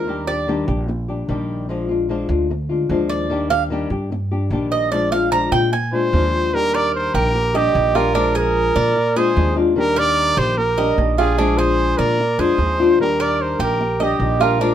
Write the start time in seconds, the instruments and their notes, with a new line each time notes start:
Already playing: upright bass D#2, cuban tres A#4
0.07 nylon-string guitar D#3 G3 D4 G4
0.27 nylon-string guitar G3 D4 G4, cuban tres D5
0.47 nylon-string guitar D#3 G3 D4 G4
0.67 upright bass A#1, nylon-string guitar G3 D4 G4
0.88 muted nylon-string guitar stroke
1.08 nylon-string guitar G3 D4 G4
1.29 upright bass A#1, nylon-string guitar D#3 G3 D4 G4
1.69 nylon-string guitar F3 G#3 D4 F4
1.89 nylon-string guitar G#3 D4 F4
2.09 nylon-string guitar F3 G#3 D4 F4
2.29 upright bass D2, nylon-string guitar G#3 D4 F4
2.50 muted nylon-string guitar stroke
2.69 nylon-string guitar G#3 D4 F4
2.89 upright bass D#2, nylon-string guitar F3 G#3 D4 F4
3.09 cuban tres D5
3.30 nylon-string guitar D#3 G3 D4 G4
3.50 nylon-string guitar G3 D4 G4, cuban tres F5
3.70 nylon-string guitar D#3 G3 D4 G4
3.90 upright bass G2, nylon-string guitar G3 D4 G4
4.12 muted nylon-string guitar stroke
4.31 nylon-string guitar G3 D4 G4
4.50 upright bass A#1, nylon-string guitar D#3 G3 D4 G4
4.72 cuban tres D#5
4.92 nylon-string guitar F3 G#3 D4 F4, cuban tres D5
5.12 nylon-string guitar G#3 D4 F4, cuban tres F5
5.31 nylon-string guitar F3 G#3 D4 F4, cuban tres A#5
5.52 upright bass A#2, nylon-string guitar G#3 D4 F4, cuban tres G5
5.73 cuban tres G#5, muted nylon-string guitar stroke
5.92 nylon-string guitar G#3 D4 F4, trumpet C5
6.13 upright bass D#2, nylon-string guitar F3 G#3 D4 F4
6.53 nylon-string guitar D#3 G3 D4 G4, trumpet A#4
6.74 cuban tres A#4, trumpet D5
6.95 trumpet C5
7.14 upright bass A#1, cuban tres G4, trumpet A#4
7.34 muted nylon-string guitar stroke
7.54 nylon-string guitar G3 D4 G4, trumpet G4, cuban tres D#5
7.74 upright bass A#1, nylon-string guitar D#3 G3 D4 G4
7.95 nylon-string guitar G3 D4 G4, cuban tres F4, trumpet A#4
8.15 nylon-string guitar F3 G#3 D4 F4, cuban tres D4
8.35 cuban tres G#4, trumpet A#4
8.76 upright bass A#2, cuban tres D5
8.96 muted nylon-string guitar stroke
9.16 nylon-string guitar G#3 D4 F4, cuban tres G#4, trumpet C5
9.36 upright bass D#2, nylon-string guitar F3 G#3 D4 F4
9.56 nylon-string guitar G#3 D4 F4
9.76 nylon-string guitar D#3 G3 D4 G4, trumpet A#4
9.96 cuban tres A#4, trumpet D5
10.37 upright bass A#1, cuban tres G4, trumpet C5
10.58 trumpet A#4, muted nylon-string guitar stroke
10.78 nylon-string guitar G3 D4 G4, cuban tres D#5
10.97 upright bass A#1, nylon-string guitar D#3 G3 D4 G4
11.18 nylon-string guitar G3 D4 G4, cuban tres F4, trumpet G#4
11.38 nylon-string guitar F3 G#3 D4 F4, cuban tres D4
11.58 cuban tres G#4, trumpet C5
11.98 upright bass A#2, trumpet A#4, cuban tres D5
12.20 muted nylon-string guitar stroke
12.39 upright bass F2, nylon-string guitar G#3 D4 F4, cuban tres G#4, trumpet C5
12.58 upright bass D#2, nylon-string guitar F3 G#3 D4 F4
12.80 nylon-string guitar G#3 D4 F4
12.99 nylon-string guitar D#3 G3 D4 G4, trumpet A#4
13.20 cuban tres A#4, trumpet D5
13.42 trumpet C5
13.59 upright bass A#1, cuban tres G4, trumpet A#4
13.80 muted nylon-string guitar stroke
14.00 nylon-string guitar G3 D4 G4, trumpet G4, cuban tres D#5
14.20 upright bass A#1, nylon-string guitar D#3 G3 D4 G4
14.40 nylon-string guitar G3 D4 G4, cuban tres F4, trumpet A#4
14.59 nylon-string guitar F3 G#3 D4 F4, cuban tres D4